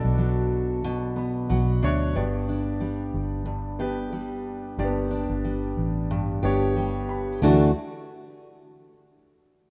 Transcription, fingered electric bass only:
0.05 1.46 B1 medium
1.50 1.80 B1 medium
1.83 2.13 D2 medium
2.15 3.10 G1 medium
3.14 4.75 G1 medium
4.78 5.26 G1 loud
5.29 5.74 G1 medium
5.77 6.39 A1 medium
6.43 7.38 G1 loud
7.42 7.73 D2 medium

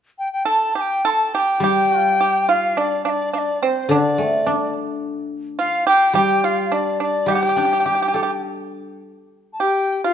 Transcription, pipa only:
0.45 0.73 A4 medium
0.75 1.02 G4 medium
1.05 1.31 A4 medium
1.35 1.61 G4 medium
1.64 1.98 G4 medium
1.98 2.17 F4 medium
2.21 2.47 G4 medium
2.49 2.75 F4 medium
2.77 3.04 D4 medium
3.05 3.32 D4 medium
3.33 3.60 D4 medium
3.63 3.89 C4 medium
3.91 4.24 D4 medium
4.24 4.43 C4 medium
4.47 4.73 D4 medium
5.59 5.85 F4 medium
5.87 6.13 G4 medium
6.15 6.41 G4 medium
6.44 6.70 F4 medium
6.72 6.98 D4 medium
7.00 7.26 D4 medium
7.28 7.34 G4 medium
7.35 7.41 G4 soft
7.43 7.48 G4 medium
7.49 7.56 G4 soft
7.58 7.64 G4 soft
7.73 7.79 G4 soft
7.80 7.85 G4 soft
7.86 7.93 G4 soft
7.95 8.01 G4 soft
8.02 8.07 G4 soft
8.08 8.14 G4 soft
8.16 8.22 G4 medium
8.23 8.30 G4 soft
9.60 10.01 G4 medium
10.04 10.13 F4 medium

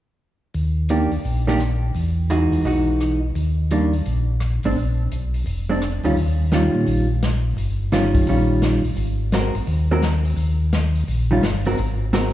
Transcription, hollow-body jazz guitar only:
0.90 1.10 D#3 soft
0.90 1.10 A#3 soft
0.90 1.11 D4 soft
0.90 1.10 G4 soft
1.47 1.59 D#3 soft
1.47 1.59 A#3 soft
1.47 1.59 D4 soft
1.47 1.59 G4 medium
2.30 2.64 E3 soft
2.30 2.64 G#3 soft
2.30 2.65 D#4 soft
2.30 2.65 F#4 soft
2.65 3.18 E3 soft
2.65 3.19 G#3 soft
2.65 3.19 D#4 soft
2.65 3.19 F#4 soft
3.71 3.91 D#3 soft
3.71 3.91 G3 soft
3.71 3.92 A#3 soft
3.71 3.92 D4 soft
4.65 4.76 G#3 soft
4.65 4.76 C4 soft
4.65 4.76 D4 medium
5.69 5.81 G#3 medium
5.69 5.81 C4 medium
5.69 5.81 D4 medium
6.04 6.16 D#3 soft
6.04 6.16 G3 soft
6.04 6.16 C#4 medium
6.04 6.16 F4 soft
6.52 7.05 D#3 soft
6.52 7.06 G3 soft
6.52 7.06 C#4 soft
6.52 7.06 F4 soft
7.92 8.26 D#3 soft
7.92 8.26 G3 soft
7.92 8.27 C#4 soft
7.92 8.27 F4 medium
8.29 8.81 D#3 soft
8.29 8.81 G3 medium
8.29 8.81 C#4 medium
8.29 8.82 F4 soft
9.34 9.53 G#3 soft
9.34 9.53 C4 soft
9.34 9.54 F#4 soft
9.34 9.54 A#4 soft
9.91 10.02 G#3 medium
9.91 10.02 C4 medium
9.91 10.03 F#4 medium
9.91 10.03 A#4 medium
11.31 11.42 D#3 medium
11.31 11.42 G3 medium
11.31 11.43 C#4 medium
11.31 11.43 F4 medium
11.66 11.77 G#3 soft
11.66 11.77 C4 soft
11.66 11.78 F#4 medium
11.66 11.78 A#4 medium
12.13 12.33 G#3 soft
12.13 12.33 C4 soft
12.13 12.33 F#4 medium
12.13 12.33 A#4 medium

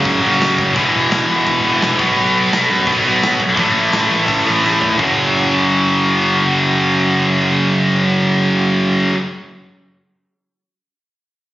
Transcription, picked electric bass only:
0.06 0.20 F#1 medium
0.25 0.39 F#1 medium
0.41 0.56 F#2 medium
0.58 0.73 F#1 medium
0.76 0.91 E1 loud
0.94 1.09 E1 medium
1.12 1.26 E1 medium
1.29 1.44 E1 medium
1.47 1.61 E1 medium
1.65 1.79 E1 medium
1.83 1.97 E1 medium
2.00 2.14 B1 medium
2.18 2.47 B1 loud
2.52 2.67 B1 medium
2.69 2.84 F#2 medium
2.87 3.02 B1 medium
3.06 3.20 B1 medium
3.22 3.37 B2 medium
3.40 3.55 B1 medium
3.57 3.73 A1 medium
3.74 3.90 A1 medium
3.92 4.08 A1 medium
4.10 4.26 A1 medium
4.28 4.43 A1 medium
4.46 4.61 A1 medium
4.63 4.78 A1 medium
4.81 4.97 G#1 medium
4.99 9.09 F#1 medium

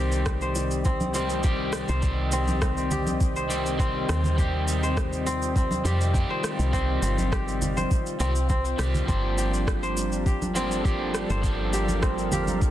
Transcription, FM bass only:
0.00 1.84 C2 loud
1.89 4.04 C2 medium
4.09 5.81 D#2 medium
5.85 6.25 F2 medium
6.59 6.98 C2 medium
7.02 7.86 G1 medium
8.20 8.74 C2 medium
8.79 9.03 C2 medium
9.08 11.25 G1 loud
11.30 12.71 G1 medium

